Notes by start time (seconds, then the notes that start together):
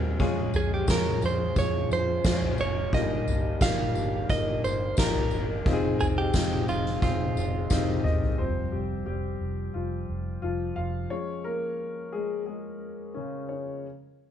Already playing: D#2 G3 C4 F4 G4 A#4
0.19 F2 G#3 C#4 F4 G#4, kick, ride, tambourine
0.54 F2 G#4, floor tom, ride, tambourine
0.74 G4
0.87 F2 G#3 C#4 F4 G#4 A#4, kick, snare, ride, tambourine
1.22 F2 C5, ride, tambourine
1.56 F2 F3 G#3 C#4 F4 G#4 C#5, kick, ride, tambourine
1.90 F2 C5, ride, tambourine
2.07 ride
2.24 F2 G#3 C#4 F4 G#4, kick, snare, ride, tambourine
2.42 floor tom
2.58 F1 C#5, ride, tambourine
2.93 G1 G2 G3 A#3 D#4 F4 G4 D#5, kick, ride, tambourine
3.27 G1, floor tom, ride, tambourine
3.61 G1 A#3 D#4 F4 G4 F5, kick, snare, ride, tambourine
3.95 G1, ride, tambourine
4.29 G1 A#3 D#4 F4 A#4 D#5, kick, ride, tambourine
4.64 G1 C5, ride, tambourine
4.81 ride
4.97 G1 A#3 D#4 F4 G4 A#4, kick, snare, ride, tambourine
5.15 floor tom
5.31 G1, ride, tambourine
5.66 F1 D#3 C4 D#4 F4 G4, kick, ride, tambourine
5.73 G#4
6.00 F1 G#4, floor tom, ride, tambourine
6.18 G4
6.33 F1 G#3 C4 D#4 F4, kick, snare, ride, tambourine
6.68 F1 F4, ride, tambourine
6.86 snare
7.02 F1 C4 D#4 F4 G#4, kick, ride, tambourine
7.19 ride
7.36 F1, ride, tambourine
7.54 ride
7.70 F1 D#3 F3 C4 D#4 F4 G4, kick, snare, tambourine
7.88 high tom
8.04 G1 D#4 D#5, mid tom
8.22 floor tom
8.38 F1 F3 G3 C4 C5
8.72 F1 G3 G4
9.06 F1 G3 G4
9.41 F1
9.74 F1 F3 F4
10.09 F1
10.42 F1 F3 F4
10.76 F1 F4 F5
11.10 F3 G#3 C#4 C#5
11.44 A#3 A#4
12.12 G#3 G#4
12.46 G#3 G#4
13.14 C#3 C#4
13.49 C#4 C#5